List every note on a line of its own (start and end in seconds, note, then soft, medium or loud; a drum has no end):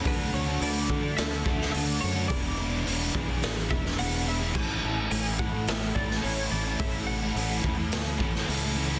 0.04 0.33 D2 loud
0.04 0.59 D3 medium
0.04 0.32 F#3 medium
0.04 0.31 A3 medium
0.04 0.33 D4 loud
0.04 0.32 F#4 medium
0.04 0.33 A4 loud
0.04 0.35 B4 medium
0.04 kick loud
0.04 open hi-hat medium
0.32 0.61 D2 medium
0.32 1.74 F#3 medium
0.32 0.59 A3 medium
0.32 0.48 D4 medium
0.32 0.47 F#4 medium
0.32 0.46 A4 medium
0.32 0.62 C#5 medium
0.47 0.60 A3 medium
0.47 0.61 D4 medium
0.47 0.61 F#4 medium
0.47 0.61 A4 medium
0.60 0.89 D2 loud
0.60 1.31 D3 loud
0.60 1.31 A3 loud
0.60 2.02 B3 medium
0.60 1.03 D4 medium
0.60 1.02 F#4 loud
0.60 1.01 A4 loud
0.60 1.16 D5 loud
0.60 open hi-hat medium
0.88 1.31 D3 medium
0.88 1.17 D3 medium
0.88 1.03 A3 medium
0.88 1.03 D4 medium
0.88 1.45 A4 medium
0.88 kick medium
0.92 1.02 F#4 medium
1.02 1.31 D4 medium
1.02 1.30 F#4 medium
1.02 1.29 A4 medium
1.02 muted overdriven electric guitar stroke soft
1.17 1.45 D2 loud
1.17 1.73 D4 medium
1.17 1.71 E5 loud
1.17 snare loud
1.17 open hi-hat medium
1.30 1.43 D4 medium
1.30 1.44 F#4 medium
1.30 1.44 A4 medium
1.44 1.73 D2 medium
1.44 1.70 D3 medium
1.44 1.73 A3 medium
1.44 1.59 D4 medium
1.44 1.58 F#4 medium
1.44 1.58 A4 medium
1.44 kick medium
1.59 1.73 D4 medium
1.59 1.74 F#4 medium
1.59 1.74 A4 medium
1.59 muted overdriven electric guitar stroke medium
1.59 snare soft
1.72 2.02 D2 loud
1.72 2.28 D3 loud
1.72 2.00 A3 loud
1.72 2.00 D4 loud
1.72 2.01 F#4 loud
1.72 2.02 A4 loud
1.72 2.00 D5 loud
1.72 open hi-hat medium
2.00 2.30 F#2 medium
2.00 2.27 D3 medium
2.00 2.30 F#3 medium
2.00 2.28 A3 medium
2.00 2.15 D4 medium
2.00 2.14 F#4 medium
2.00 2.13 A4 medium
2.00 2.28 C#5 loud
2.14 2.29 A3 medium
2.14 2.28 D4 medium
2.14 2.28 F#4 medium
2.14 2.28 A4 medium
2.28 2.85 E1 loud
2.28 2.83 E2 medium
2.28 2.84 B2 medium
2.28 2.56 E3 medium
2.28 2.72 G#3 medium
2.28 2.56 B3 medium
2.28 2.57 D4 medium
2.28 2.70 E4 loud
2.28 2.58 G#4 medium
2.28 3.38 D5 medium
2.28 kick loud
2.28 open hi-hat medium
2.57 2.85 E3 medium
2.57 2.72 B3 medium
2.57 2.71 D4 medium
2.57 2.71 G#4 medium
2.71 2.85 E3 medium
2.71 2.86 G#3 medium
2.71 2.85 B3 medium
2.71 2.85 D4 medium
2.71 2.87 E4 medium
2.71 2.87 G#4 medium
2.84 3.14 E1 medium
2.84 3.42 E2 loud
2.84 3.42 B2 loud
2.84 3.60 E3 medium
2.84 3.14 G#3 loud
2.84 3.28 B3 loud
2.84 3.27 D4 loud
2.84 3.16 E4 loud
2.84 3.27 G#4 medium
2.84 open hi-hat medium
3.13 3.42 B1 medium
3.13 3.27 E3 medium
3.13 3.27 G#3 medium
3.13 3.26 D4 medium
3.13 3.27 E4 medium
3.13 3.69 G#4 medium
3.13 kick medium
3.27 3.57 B3 medium
3.27 3.56 D4 medium
3.27 3.55 G#4 medium
3.27 muted overdriven electric guitar stroke soft
3.41 3.70 A1 medium
3.41 3.96 D4 medium
3.41 snare loud
3.41 open hi-hat medium
3.56 3.71 B3 medium
3.56 3.71 D4 medium
3.56 3.72 G#4 medium
3.70 3.98 E1 medium
3.70 3.99 E3 medium
3.70 3.84 G#3 medium
3.70 3.85 B3 medium
3.70 3.84 D4 medium
3.70 3.83 E4 medium
3.70 3.83 G#4 medium
3.70 3.98 E5 medium
3.70 kick medium
3.83 3.98 B3 medium
3.83 3.99 D4 medium
3.83 4.00 G#4 medium
3.83 muted overdriven electric guitar stroke medium
3.83 snare soft
3.96 4.52 E2 medium
3.96 4.52 B2 medium
3.96 4.26 E3 loud
3.96 4.26 G#3 medium
3.96 4.26 B3 loud
3.96 4.28 E4 medium
3.96 4.28 F#5 medium
3.96 open hi-hat medium
4.00 4.54 E1 medium
4.00 4.27 D4 loud
4.00 4.29 G#4 loud
4.26 4.56 E3 medium
4.26 4.41 G#3 medium
4.26 4.41 B3 medium
4.26 4.41 D4 medium
4.26 4.39 E4 medium
4.26 4.40 G#4 medium
4.26 4.54 E5 medium
4.39 4.54 E3 medium
4.39 4.55 G#3 medium
4.39 4.54 B3 medium
4.39 4.54 D4 medium
4.39 4.56 E4 medium
4.39 4.56 G#4 medium
4.55 4.83 A1 medium
4.55 5.11 A2 medium
4.55 5.11 E3 medium
4.55 4.82 A3 medium
4.55 4.83 C#4 medium
4.55 4.84 E4 medium
4.55 4.85 A4 medium
4.55 4.97 A5 loud
4.55 kick loud
4.55 crash loud
4.82 5.11 A1 medium
4.82 6.23 E3 medium
4.82 4.99 A3 medium
4.82 4.98 C#4 medium
4.82 4.98 E4 medium
4.82 4.97 A4 medium
4.97 5.12 A3 medium
4.97 5.12 C#4 medium
4.97 5.13 E4 medium
4.97 5.13 A4 medium
4.97 5.11 G#5 loud
5.11 5.39 A1 medium
5.11 5.82 A2 loud
5.11 5.82 E3 loud
5.11 5.55 A3 medium
5.11 5.54 C#4 loud
5.11 5.53 E4 loud
5.11 5.53 A4 loud
5.11 5.39 G#5 medium
5.11 open hi-hat medium
5.38 5.67 A2 medium
5.38 5.52 E3 medium
5.38 5.52 A3 medium
5.38 5.51 C#4 medium
5.38 5.51 E4 medium
5.38 5.68 F#5 loud
5.38 kick medium
5.52 5.84 A3 medium
5.52 5.82 C#4 medium
5.52 5.81 E4 medium
5.52 5.81 A4 medium
5.52 muted overdriven electric guitar stroke soft
5.67 5.95 A1 loud
5.67 6.23 C#4 medium
5.67 5.97 E5 medium
5.67 snare loud
5.67 open hi-hat medium
5.82 5.96 A3 medium
5.82 5.95 C#4 medium
5.82 5.96 E4 medium
5.82 5.98 A4 medium
5.94 6.23 A1 medium
5.94 6.09 E3 medium
5.94 6.12 A3 medium
5.94 6.11 C#4 medium
5.94 6.10 E4 medium
5.94 6.22 D5 medium
5.94 kick medium
5.98 6.10 A4 medium
6.09 6.23 A3 medium
6.09 6.23 C#4 medium
6.09 6.24 E4 medium
6.09 6.25 A4 medium
6.09 muted overdriven electric guitar stroke medium
6.09 snare soft
6.23 6.51 A1 medium
6.23 6.79 A2 loud
6.23 6.79 E3 loud
6.23 6.51 A3 loud
6.23 6.51 C#4 loud
6.23 6.52 E4 loud
6.23 6.54 A4 loud
6.23 6.49 C#5 medium
6.23 open hi-hat medium
6.50 6.79 A1 medium
6.50 6.78 E3 medium
6.50 6.68 A3 medium
6.50 6.67 C#4 medium
6.50 6.66 E4 medium
6.50 6.66 A4 medium
6.50 6.78 D5 medium
6.66 6.80 A3 medium
6.66 6.80 C#4 medium
6.66 6.80 E4 medium
6.66 6.81 A4 medium
6.79 7.34 A1 medium
6.79 7.35 A2 medium
6.79 7.35 E3 medium
6.79 7.07 A3 medium
6.79 7.08 C#4 medium
6.79 7.08 E4 medium
6.79 7.09 A4 loud
6.79 7.06 E5 medium
6.79 kick loud
6.79 open hi-hat medium
7.07 8.48 E3 medium
7.07 7.23 A3 medium
7.07 7.22 C#4 medium
7.07 7.21 E4 medium
7.07 7.21 A4 medium
7.07 7.59 F#5 medium
7.21 7.37 A3 medium
7.21 7.36 C#4 medium
7.21 7.36 E4 medium
7.21 7.37 A4 medium
7.36 7.63 A1 medium
7.36 8.06 A2 medium
7.36 8.06 E3 medium
7.36 7.81 A3 loud
7.36 7.79 C#4 medium
7.36 7.79 E4 loud
7.36 7.78 A4 loud
7.36 open hi-hat medium
7.62 7.91 E2 medium
7.62 7.77 E3 medium
7.62 7.77 A3 medium
7.62 7.76 C#4 medium
7.62 7.76 E4 medium
7.62 kick medium
7.77 8.07 C#4 medium
7.77 8.06 E4 medium
7.77 8.07 A4 medium
7.77 muted overdriven electric guitar stroke soft
7.81 8.09 A3 medium
7.92 8.20 D2 medium
7.92 8.46 C#4 medium
7.92 snare loud
7.92 open hi-hat medium
8.07 8.20 A3 medium
8.07 8.20 C#4 medium
8.07 8.20 E4 medium
8.07 8.22 A4 medium
8.18 8.47 A1 loud
8.18 8.32 E3 medium
8.18 8.37 A3 medium
8.18 8.35 C#4 medium
8.18 8.35 E4 medium
8.18 kick medium
8.22 8.35 A4 medium
8.33 8.49 C#4 medium
8.33 8.49 E4 medium
8.33 8.50 A4 medium
8.33 muted overdriven electric guitar stroke medium
8.33 snare soft
8.37 8.49 A3 medium
8.49 8.99 C#2 loud
8.49 8.99 A2 loud
8.49 8.99 E3 loud
8.49 8.76 A3 loud
8.49 8.76 C#4 loud
8.49 8.77 E4 loud
8.49 8.78 A4 loud
8.49 open hi-hat medium
8.74 8.99 E3 medium
8.74 8.91 A3 medium
8.74 8.90 C#4 medium
8.74 8.90 E4 medium
8.74 8.90 A4 medium
8.90 8.99 A3 medium
8.90 8.99 C#4 medium
8.90 8.99 E4 medium
8.90 8.99 A4 medium